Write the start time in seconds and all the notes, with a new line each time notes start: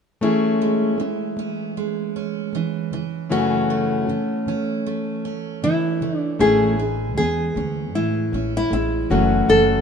0.21 E3 A3 C#4 E4 G#4
0.62 G#3
0.98 E3 A3 C#4
1.37 A3 C#4
1.77 G#3
2.16 C#4
2.53 E3 A3 C#4
2.91 F#2 C#3 E3
3.29 F#2 C#3 E3 A3 C#4 F#4
3.70 A3
4.07 F#2 C#3 E3
4.46 F#2 C#3 E3 C#4
4.86 A3
5.25 C#4
5.62 F#2 C#3 E3 E4
6.00 F#2 C#3 E3 A3
6.18 D4
6.39 A1 E3 A3 C#4 E4 G#4
6.78 G#3 A3 C#4
7.17 E2 E3 A3 C#4 G#4
7.55 D2 A3 C#4
7.95 A2 E3 E4
8.32 A1 A3 C#4
8.57 E4
8.71 A1 G#3 A3 C#4 E4
9.10 F#1 F#2 E3 F#3 A3 C#4 F#4
9.49 F#1 E3 A4